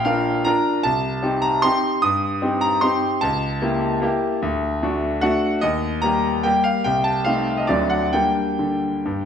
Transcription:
Already playing: A#1 F5 G5
0.05 D4 F4 A#4 F5
0.45 D4 F4 A#4 A#5
0.83 C2 A5
1.23 C4 D#4 G4
1.42 A#5
1.62 C4 D#4 G4 C6
2.02 G2 D#6
2.42 C4 D#4 G4
2.61 A#5
2.81 C4 D#4 G4 C6
3.21 C#2 A5
3.62 A#3 E4 G4
4.02 A#3 E4 G4
4.42 D2
4.83 A3 D4 F#4
5.21 A3 D4 F#4 F#5
5.61 D#2 D#5
6.02 G3 A#3 G4 A#5
6.43 G3 A#3 G4 G5
6.64 F5
6.84 C2 G5
7.04 A5
7.24 A3 C4 D#4 F5
7.57 D#5
7.67 D2 F#3 C4 D4 D5
7.90 F#5
8.13 G3 A#3 D4 G5
8.59 D3
9.05 G2

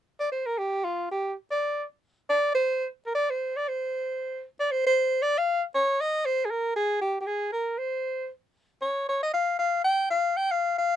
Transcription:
0.20 D5
0.32 C5
0.46 A#4
0.58 G4
0.84 F4
1.11 G4
1.51 D5
2.29 D5
2.54 C5
3.06 A#4
3.15 D5
3.30 C5
3.56 D5
3.68 C5
4.60 D5
4.71 C5
4.86 C5
5.22 D5
5.38 F5
5.75 C#5
6.01 D#5
6.25 C5
6.45 G#4
6.51 A#4
6.76 G#4
7.01 G4
7.21 G4
7.26 G#4
7.52 A#4
7.78 C5
8.82 C#5
9.08 C#5
9.23 D#5
9.34 F5
9.59 F5
9.84 G5
10.10 F5
10.37 G5
10.51 F5
10.78 F5

